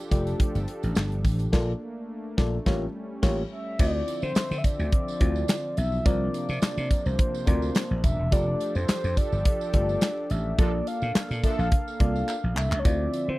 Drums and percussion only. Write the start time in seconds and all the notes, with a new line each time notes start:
0.11 kick, closed hi-hat, tambourine
0.27 closed hi-hat, tambourine
0.40 kick, closed hi-hat
0.55 closed hi-hat, tambourine
0.68 closed hi-hat
0.83 closed hi-hat, tambourine
0.95 snare, clap, tambourine
1.12 closed hi-hat
1.25 kick, open hi-hat, tambourine
1.39 closed hi-hat, tambourine
1.53 kick, snare, crash
2.38 kick, snare
2.66 kick, snare
3.23 kick, snare, crash
3.79 kick, crash, tambourine
4.08 closed hi-hat, tambourine
4.22 tambourine
4.35 snare, clap, closed hi-hat, tambourine
4.51 tambourine
4.64 kick, closed hi-hat, tambourine
4.79 tambourine
4.92 kick, closed hi-hat
5.08 tambourine
5.21 kick, closed hi-hat
5.36 tambourine
5.48 snare, clap, closed hi-hat, tambourine
5.77 closed hi-hat, tambourine
5.92 tambourine
6.06 kick, closed hi-hat, tambourine
6.34 closed hi-hat, tambourine
6.49 tambourine
6.62 snare, clap, closed hi-hat, tambourine
6.78 tambourine
6.91 kick, closed hi-hat, tambourine
7.06 tambourine
7.19 kick, closed hi-hat
7.35 tambourine
7.47 kick, closed hi-hat
7.62 tambourine
7.75 snare, clap, closed hi-hat, tambourine
8.04 kick, closed hi-hat, tambourine
8.32 kick, closed hi-hat, tambourine
8.60 closed hi-hat, tambourine
8.75 tambourine
8.88 snare, clap, closed hi-hat, tambourine
9.04 tambourine
9.17 kick, closed hi-hat, tambourine
9.32 tambourine
9.45 kick, closed hi-hat
9.61 tambourine
9.74 kick, closed hi-hat
9.89 tambourine
10.01 snare, clap, closed hi-hat, tambourine
10.30 closed hi-hat, tambourine
10.58 kick, closed hi-hat, tambourine
10.87 closed hi-hat, tambourine
11.02 tambourine
11.15 snare, clap, closed hi-hat, tambourine
11.31 tambourine
11.44 kick, closed hi-hat, tambourine
11.59 tambourine
11.72 kick, closed hi-hat
11.88 tambourine
12.00 kick, closed hi-hat
12.16 tambourine
12.28 clap, tambourine
12.57 clap, tambourine
12.72 clap
12.85 kick, closed hi-hat, tambourine
13.14 closed hi-hat, tambourine